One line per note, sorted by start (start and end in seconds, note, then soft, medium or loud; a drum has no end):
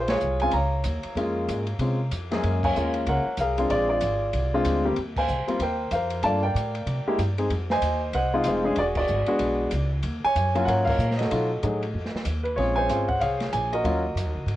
0.00 0.21 A#1 medium
0.00 0.10 G#4 medium
0.00 0.09 C5 medium
0.08 0.41 F4 medium
0.08 0.70 G#4 medium
0.08 0.38 C#5 medium
0.08 snare medium
0.08 ride medium
0.20 0.52 C2 medium
0.20 hi-hat pedal medium
0.40 0.52 G#3 medium
0.40 0.53 C4 medium
0.40 0.53 C#4 medium
0.40 0.53 F4 medium
0.40 0.53 G#5 loud
0.40 ride soft
0.51 0.84 C#2 medium
0.51 2.08 A#5 medium
0.51 ride medium
0.56 2.09 C#5 medium
0.56 2.09 F5 medium
0.84 1.03 D#2 medium
0.84 hi-hat pedal medium
0.84 ride medium
1.03 muted upright bass stroke soft
1.03 ride soft
1.15 1.47 F2 medium
1.15 1.64 G#3 medium
1.15 1.64 A#3 medium
1.15 1.64 C#4 medium
1.15 1.64 F4 medium
1.15 ride medium
1.48 1.78 G#2 medium
1.48 hi-hat pedal medium
1.48 ride medium
1.67 ride soft
1.79 2.10 C3 medium
1.79 1.98 G#3 medium
1.79 1.97 C4 soft
1.79 1.98 C#4 soft
1.79 1.98 F4 medium
1.79 ride medium
2.11 2.42 F2 medium
2.11 hi-hat pedal medium
2.11 ride medium
2.31 2.73 F#2 medium
2.31 2.73 G#3 medium
2.31 2.73 A#3 medium
2.31 2.73 C#4 medium
2.31 2.73 G#4 medium
2.31 snare soft
2.31 ride soft
2.43 2.74 F#2 medium
2.43 ride medium
2.63 3.07 C#5 medium
2.63 3.23 F5 medium
2.63 2.93 G#5 medium
2.63 kick medium
2.63 crash medium
2.76 3.06 D#2 medium
2.76 3.23 G#3 medium
2.76 3.23 A#3 medium
2.76 3.23 C#4 medium
2.76 3.23 F4 medium
2.76 hi-hat pedal medium
2.94 ride soft
3.06 3.24 C#2 medium
3.06 3.39 A#4 medium
3.06 3.67 C#5 medium
3.06 3.37 F#5 medium
3.06 ride medium
3.26 muted upright bass stroke soft
3.37 3.69 C2 medium
3.37 3.69 A#4 medium
3.37 3.72 F5 medium
3.37 hi-hat pedal medium
3.37 ride medium
3.41 3.69 G#4 medium
3.58 3.99 G#3 medium
3.58 4.00 C4 medium
3.58 4.00 D4 medium
3.58 3.71 F4 medium
3.58 ride soft
3.70 4.01 A#1 medium
3.70 3.90 F4 medium
3.70 3.89 G#4 medium
3.70 3.88 D5 medium
3.70 ride medium
3.89 4.53 F4 medium
3.89 4.81 G#4 medium
3.89 4.80 D5 medium
4.01 4.32 G#1 medium
4.01 hi-hat pedal medium
4.01 ride medium
4.33 4.64 C2 medium
4.33 ride medium
4.54 4.83 G#3 medium
4.54 4.83 C4 medium
4.54 4.83 D4 medium
4.54 4.83 F4 medium
4.64 4.96 D2 medium
4.64 hi-hat pedal medium
4.64 ride medium
4.85 4.96 G3 medium
4.85 4.96 A#3 medium
4.85 4.96 C4 medium
4.85 4.96 G4 medium
4.96 5.28 D#2 medium
4.96 ride medium
5.16 5.61 C5 medium
5.16 5.76 F5 medium
5.16 5.46 G#5 medium
5.16 kick medium
5.16 crash medium
5.28 5.46 C2 medium
5.28 hi-hat pedal medium
5.47 5.59 G3 medium
5.47 5.59 A#3 medium
5.47 5.59 C4 medium
5.47 5.59 F4 medium
5.47 muted upright bass stroke soft
5.47 ride soft
5.59 5.90 D#2 medium
5.59 5.93 A#4 medium
5.59 5.92 C5 medium
5.59 5.91 G5 medium
5.59 ride medium
5.91 6.22 F2 medium
5.91 6.23 A#4 medium
5.91 6.22 C5 medium
5.91 6.24 F5 medium
5.91 hi-hat pedal medium
5.91 ride medium
6.10 ride soft
6.23 6.54 G2 medium
6.23 6.41 A3 medium
6.23 6.41 A#3 medium
6.23 6.41 D4 medium
6.23 6.41 F4 medium
6.23 6.43 D5 medium
6.23 6.84 F5 medium
6.23 6.43 A5 loud
6.23 ride medium
6.43 7.35 A#4 medium
6.43 7.35 D5 medium
6.43 7.34 G5 medium
6.55 6.86 A2 medium
6.55 hi-hat pedal medium
6.55 ride medium
6.75 ride soft
6.86 7.04 C3 medium
6.86 ride medium
7.07 7.18 G#3 medium
7.07 7.18 A#3 medium
7.07 7.18 E4 medium
7.07 7.18 G4 medium
7.07 muted upright bass stroke soft
7.18 7.49 G2 medium
7.18 hi-hat pedal medium
7.18 ride medium
7.38 7.49 G#3 medium
7.38 7.49 C4 medium
7.38 7.49 D#4 medium
7.38 7.50 G#4 medium
7.38 ride soft
7.50 7.81 F2 medium
7.50 ride medium
7.70 8.14 C5 medium
7.70 8.14 D#5 medium
7.70 8.00 G#5 loud
7.70 snare soft
7.81 8.12 D#2 medium
7.81 hi-hat pedal medium
7.81 ride medium
8.13 8.44 C2 medium
8.13 8.46 C5 medium
8.13 8.74 D#5 medium
8.13 8.44 F#5 medium
8.13 ride medium
8.34 8.63 G#3 medium
8.34 8.63 C4 medium
8.34 8.63 D#4 medium
8.34 8.63 F4 medium
8.44 8.76 F1 medium
8.44 8.75 F5 medium
8.44 hi-hat pedal medium
8.44 ride medium
8.48 8.64 G#4 medium
8.48 8.76 C5 medium
8.64 8.76 G#3 medium
8.64 8.76 C#4 medium
8.64 8.76 D4 medium
8.64 8.76 G#4 medium
8.76 9.08 E1 medium
8.76 8.83 D5 medium
8.76 ride medium
8.80 8.97 F#4 medium
8.80 8.97 G#4 medium
8.95 9.27 F#4 medium
8.95 9.88 G#4 medium
8.95 9.88 D5 medium
8.95 kick medium
8.95 crash medium
9.07 9.27 G#1 medium
9.07 hi-hat pedal medium
9.26 9.70 G#3 medium
9.26 9.69 B3 medium
9.26 9.69 D4 medium
9.26 9.70 F#4 medium
9.26 ride soft
9.39 9.71 B1 medium
9.39 ride medium
9.71 10.03 C#2 medium
9.71 hi-hat pedal medium
9.71 ride medium
10.03 10.21 D#2 medium
10.03 ride medium
10.24 10.67 C#5 medium
10.24 10.69 G#5 loud
10.24 muted upright bass stroke soft
10.36 10.66 F#2 medium
10.36 hi-hat pedal medium
10.36 ride medium
10.55 10.97 F#3 medium
10.55 10.96 A#3 medium
10.55 10.97 C#4 medium
10.55 10.97 F4 medium
10.55 ride soft
10.65 10.98 G#2 medium
10.65 10.87 A#4 medium
10.65 10.87 C#5 medium
10.65 10.86 F#5 medium
10.65 ride medium
10.85 11.29 C#5 medium
10.85 11.15 F5 loud
10.85 kick medium
10.85 crash medium
10.89 11.29 A#4 medium
10.98 11.29 A#2 medium
10.98 hi-hat pedal medium
11.11 snare soft
11.16 12.21 D#5 medium
11.16 ride soft
11.21 12.23 F#4 medium
11.21 12.23 A4 medium
11.21 snare soft
11.31 11.62 B2 medium
11.31 11.48 F#3 medium
11.31 11.48 A3 medium
11.31 11.49 D#4 medium
11.31 11.48 F4 medium
11.31 ride medium
11.63 11.93 A2 medium
11.63 11.80 F#3 medium
11.63 11.80 A3 medium
11.63 11.80 D#4 soft
11.63 11.80 G#4 medium
11.63 hi-hat pedal medium
11.63 ride medium
11.83 ride medium
11.94 12.12 F2 medium
12.05 snare soft
12.14 muted upright bass stroke soft
12.14 snare soft
12.25 12.56 D#2 medium
12.25 hi-hat pedal medium
12.25 ride medium
12.43 12.56 B4 medium
12.43 ride medium
12.56 12.88 A#1 medium
12.56 12.88 G#3 medium
12.56 12.88 C4 medium
12.56 12.88 C#4 medium
12.56 12.88 F4 medium
12.56 13.17 G#4 medium
12.56 12.76 C#5 medium
12.56 ride medium
12.76 13.37 C5 medium
12.76 13.21 C#5 medium
12.76 13.06 G#5 loud
12.89 13.20 G#1 medium
12.89 13.07 G#3 medium
12.89 13.07 C4 medium
12.89 13.07 C#4 medium
12.89 13.07 F4 medium
12.89 hi-hat pedal medium
12.89 ride medium
13.08 13.20 F#5 medium
13.08 kick medium
13.08 ride soft
13.20 13.52 C2 medium
13.20 13.81 G#4 medium
13.20 13.81 C#5 medium
13.20 13.50 F5 medium
13.20 ride medium
13.40 snare soft
13.40 ride soft
13.53 13.84 A#1 medium
13.53 13.73 G#5 medium
13.53 hi-hat pedal soft
13.53 ride medium
13.73 14.56 F#4 medium
13.73 14.56 A#4 medium
13.73 14.56 D#5 medium
13.73 ride soft
13.84 14.14 D#2 medium
13.84 14.02 F#3 medium
13.84 14.02 A#3 medium
13.84 14.02 C#4 medium
13.84 14.02 F4 medium
13.84 ride medium
14.15 14.25 F#2 medium
14.15 hi-hat pedal medium
14.15 ride medium
14.25 14.35 D#2 medium
14.35 14.46 C#2 medium
14.46 14.56 G#2 medium
14.46 ride medium